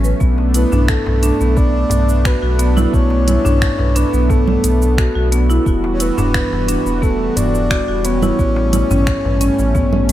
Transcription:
Already playing: sub bass A1, analog synth pad A3 C#4
0.04 marimba B4, cabasa
0.20 sub bass B1, analog synth pad A3 B3 D4, marimba B3, kick, cabasa
0.38 darbuka ka, darbuka tek
0.54 marimba E4, soft synth lead B4, closed hi-hat, cabasa
0.72 sub bass B1, marimba D4, darbuka ka, darbuka dum, cabasa
0.88 soft synth lead A4, finger snap, kick, cabasa
1.06 sub bass B1, marimba B4, darbuka tek, darbuka dum
1.23 marimba D4, closed hi-hat, cabasa
1.41 sub bass B1, marimba B3, darbuka tek, cabasa
1.57 marimba B3, soft synth lead D5, kick, cabasa
1.90 sub bass B1, closed hi-hat, darbuka ka, darbuka dum, cabasa
2.09 cabasa
2.25 marimba F#4, soft synth lead B4, finger snap, kick, cabasa
2.42 sub bass B1, marimba F#4
2.59 marimba B3, closed hi-hat, darbuka ka, cabasa
2.77 marimba E4, low conga, cabasa
2.93 sub bass B1, marimba B3, soft synth lead C#5, kick, cabasa
3.10 darbuka ka, darbuka tek
3.27 marimba E4, closed hi-hat, low conga, cabasa
3.45 sub bass B1, marimba D4, darbuka ka, darbuka dum, cabasa
3.62 finger snap, kick, cabasa
3.79 sub bass B1, marimba B4, darbuka tek, darbuka dum
3.95 marimba D4, soft synth lead B4, closed hi-hat, cabasa
4.13 sub bass B1, marimba B3, cabasa
4.29 marimba B3, soft synth lead A4, kick, darbuka dum, cabasa
4.48 low conga
4.64 sub bass B1, closed hi-hat, cabasa
4.82 darbuka tek, cabasa
4.98 marimba F#4, finger snap, kick, cabasa
5.15 sub bass B1, marimba F#4, darbuka ka
5.32 marimba B3, closed hi-hat, cabasa
5.50 marimba E4, cabasa
5.66 sub bass E1, analog synth pad E3 G3 F#4, marimba B3, kick, cabasa
5.84 darbuka ka, darbuka tek
5.93 soft synth lead C#5
6.00 marimba E4, soft synth lead B4, closed hi-hat, cabasa
6.18 sub bass E1, marimba D4, darbuka ka, darbuka dum, cabasa
6.34 finger snap, kick, cabasa
6.52 sub bass E1, marimba B4, darbuka tek, darbuka dum
6.68 marimba D4, closed hi-hat, cabasa
6.86 sub bass E1, marimba B3, darbuka tek, cabasa
7.02 marimba B3, soft synth lead A4, kick, cabasa
7.36 sub bass E1, soft synth lead D5, closed hi-hat, darbuka ka, darbuka dum, cabasa
7.55 cabasa
7.70 marimba F#4, finger snap, kick, cabasa
7.88 sub bass E1, marimba F#4
8.05 marimba B3, soft synth lead C#5, closed hi-hat, darbuka ka, cabasa
8.22 marimba E4, low conga, cabasa
8.39 sub bass A1, analog synth pad A3 C#4, marimba B3, kick, cabasa
8.56 darbuka ka, darbuka tek
8.73 marimba E4, closed hi-hat, low conga, cabasa
8.91 sub bass A1, marimba C#4, darbuka ka, darbuka dum, cabasa
9.07 finger snap, kick, darbuka tek, cabasa
9.25 sub bass A1, marimba B4, darbuka tek, darbuka dum
9.41 marimba C#4, closed hi-hat, cabasa
9.59 sub bass A1, marimba B3, darbuka tek, cabasa
9.75 marimba B3, kick, darbuka dum, cabasa
9.93 low conga

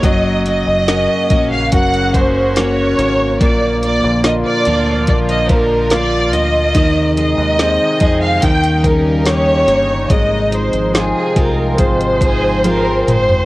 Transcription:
Already playing: steel-string acoustic guitar A#3 D#4 G4
0.02 fingered electric bass F#1, steel-string acoustic guitar F#2, analog synth pad C#3 F#3 A#3 F#4, grand piano F#3, violin section D#5, kick, closed hi-hat
0.46 steel-string acoustic guitar A#3, violin section D#5, closed hi-hat
0.67 fingered electric bass F#1
0.87 grand piano C#4 F#4 A#4, steel-string acoustic guitar C#4, snare, closed hi-hat
1.30 fingered electric bass A#1, steel-string acoustic guitar A#3 C#4 F#4, kick, closed hi-hat
1.52 violin section F5
1.72 fingered electric bass F#1, steel-string acoustic guitar A#3, grand piano C#4 F#4 A#4, violin section F#5, kick, closed hi-hat
1.94 closed hi-hat
2.14 steel-string acoustic guitar C#4, violin section C5, kick, closed hi-hat
2.56 steel-string acoustic guitar A#3 C#4 F#4, grand piano C#4 F#4 A#4, violin section C#5, snare, closed hi-hat
2.99 fingered electric bass G#1, steel-string acoustic guitar A#3, snare, closed hi-hat
3.40 fingered electric bass A#1, steel-string acoustic guitar A#2, analog synth pad D3 F3 F4, grand piano A#3, violin section D5, kick, closed hi-hat
3.82 steel-string acoustic guitar A#3, violin section D5, closed hi-hat
4.04 fingered electric bass A#1
4.24 steel-string acoustic guitar D4, grand piano F4 A#4 D5, violin section D#5, snare, closed hi-hat
4.46 violin section D5
4.65 fingered electric bass D2, steel-string acoustic guitar A#3 D4 F4, closed hi-hat
5.07 fingered electric bass A#1, steel-string acoustic guitar A#3, grand piano F4 A#4 D5, violin section D5, kick, closed hi-hat
5.29 violin section D#5, closed hi-hat
5.49 steel-string acoustic guitar D4, violin section A#4, kick, closed hi-hat
5.90 steel-string acoustic guitar A#3 F4, grand piano F4 A#4 F5, violin section D5, snare, closed hi-hat
6.33 fingered electric bass D2, steel-string acoustic guitar A#3, violin section D#5, snare, closed hi-hat
6.75 fingered electric bass D#2, analog synth pad C3 D#3 G#3 D#4, grand piano D#3, steel-string acoustic guitar D#3, kick, closed hi-hat
7.17 steel-string acoustic guitar G#3, violin section D#5, closed hi-hat
7.38 fingered electric bass D#2
7.59 steel-string acoustic guitar C4, grand piano D#4 G#4 C5, snare, closed hi-hat
8.00 fingered electric bass F2, steel-string acoustic guitar G#3 C4 G#4, kick, closed hi-hat
8.23 violin section F5
8.42 fingered electric bass D#2, analog synth pad C#3 G3 A#3, steel-string acoustic guitar D#3, grand piano D#3, violin section G5, kick, closed hi-hat
8.64 closed hi-hat
8.84 steel-string acoustic guitar C#4, violin section A#4, kick, closed hi-hat
9.25 steel-string acoustic guitar A#3 C#4 G4, grand piano C#4 D#4 G4, violin section C#5, snare, closed hi-hat
9.68 fingered electric bass G1, steel-string acoustic guitar A#3, snare, closed hi-hat
10.10 fingered electric bass G#1, analog synth pad C3 F3 G#3, grand piano G#3, violin section D#5, kick, closed hi-hat
10.52 steel-string acoustic guitar G#3, violin section C5, closed hi-hat
10.73 fingered electric bass G#1, closed hi-hat
10.94 steel-string acoustic guitar C4, grand piano F4 G#4 C5, violin section G#4, snare, closed hi-hat
11.36 fingered electric bass C2, steel-string acoustic guitar G#3 C4 F4, violin section A#4, kick, closed hi-hat
11.77 fingered electric bass G#1, steel-string acoustic guitar G#3, grand piano F4 G#4 C5, violin section C5, kick, closed hi-hat
12.01 closed hi-hat
12.21 steel-string acoustic guitar C4, violin section G#4, kick, closed hi-hat
12.64 steel-string acoustic guitar G#3 C4 F4, grand piano F4 G#4 C5, violin section A#4, closed hi-hat, high tom
13.07 fingered electric bass G1, steel-string acoustic guitar G#3, violin section C5, closed hi-hat, mid tom
13.29 floor tom

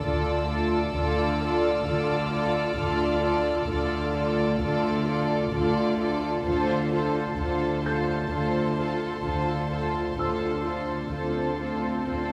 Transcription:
Already playing: violin section D6 E6
0.04 double bass section D2, cello section D3, viola section F4, violin section A4 D5
0.50 viola section F4, violin section A4 D5
0.95 double bass section D2, cello section D3, viola section F4, violin section A4 D5 F6
1.42 viola section F4, violin section A4 D5
1.86 double bass section D2, cello section D3, viola section F4, violin section A4 D5
2.32 viola section F4, violin section A4 D5
2.78 double bass section D2, cello section D3, viola section F4, violin section A4 D5
3.23 viola section F4, violin section A4 D5
3.69 double bass section D2, cello section D3, viola section F4, violin section A4 D5
4.16 viola section F4, violin section A4 D5
4.62 double bass section D2, cello section D3, viola section F4, violin section A4 D5
5.08 viola section F4, violin section A4 D5
5.54 double bass section D2, cello section D3, viola section F4, violin section A4 D5
6.00 viola section F4, violin section A4 D5
6.46 double bass section D2, cello section D3, viola section F4, violin section A4 C5 A5 C6
6.92 viola section F4, violin section A4 C5
7.38 double bass section D2, cello section D3, viola section F4, violin section A4 C5
7.84 viola section F4, violin section A4 C5, felt piano G6
8.30 double bass section D2, cello section D3, viola section F4, violin section A4 C5
8.77 viola section F4, violin section A4 C5
9.24 double bass section D2, cello section D3, viola section F4, violin section A4 C5
9.71 viola section F4, violin section A4 C5
10.18 double bass section D2, cello section D3, viola section F4, violin section A4 C5, felt piano E6, swell
10.65 viola section F4, violin section A4 C5
11.11 double bass section D2, cello section D3, viola section F4, violin section A4 C5
11.60 viola section F4, violin section A4 C5
12.06 double bass section D2, cello section D3, viola section F4, violin section A4 C5

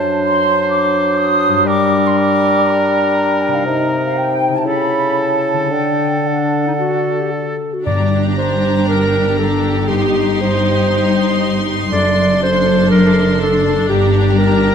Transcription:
Already playing: harp F#2 D4 A4 C5 D5, bassoon F#3, clarinet D4, oboe C5, flute section A5
0.21 flute section C6
0.70 flute section D6
1.18 flute section D#6
1.48 harp G2
1.52 harp D4
1.57 harp G4
1.61 harp A#4
1.67 bassoon G3, oboe A#4, flute section D6
2.06 flute section C6
2.17 flute section D6
2.67 flute section A#5
3.41 flute section G5
3.48 harp C3
3.52 harp D#4, flute section F5
3.56 harp G4
3.61 harp A#4
3.66 bassoon C3, clarinet D#4, flute section D#5
4.06 flute section F5
4.17 flute section G5
4.48 harp C#3
4.53 harp E4, flute section A5
4.58 harp G4
4.62 bassoon C#3, clarinet E4, harp A4
4.67 oboe A4, flute section B5
5.19 flute section A5
5.53 harp D3
5.58 harp D4
5.63 harp A4
5.71 bassoon D3, clarinet D4, flute section G5
6.25 clarinet D4, flute section F#5
6.67 clarinet D#4
6.79 clarinet F#4
7.20 clarinet G4
7.32 clarinet A4
7.74 clarinet F#4
7.86 double bass section G1, harp G2, timpani G2, cello section G2, viola section D4, violin section G4 A#5, clarinet D5
8.12 harp D4
8.38 harp A#4, clarinet C5
8.64 harp G4
8.88 harp D3, clarinet A#4
9.13 harp D4
9.38 clarinet A4, harp A#4
9.64 harp G4
9.88 harp G2, viola section D#4, clarinet G4, violin section C6
10.15 harp D#4
10.41 clarinet C5, harp C5
10.67 harp G4
10.92 harp G3
11.18 harp D#4
11.42 harp C5
11.67 harp G4
11.92 double bass section F#1, cello section F#2, harp F#2, viola section D4, violin section A4, clarinet D5
12.17 harp D4
12.42 harp C5, clarinet C5
12.67 harp A4
12.91 harp F#2, clarinet A#4
13.17 harp D4
13.41 clarinet A4, harp C5
13.65 harp A4
13.89 double bass section G1, harp G2, cello section G2, clarinet G4, violin section G4 A#5
14.16 harp D4
14.38 clarinet A#4, harp A#4
14.66 harp G4

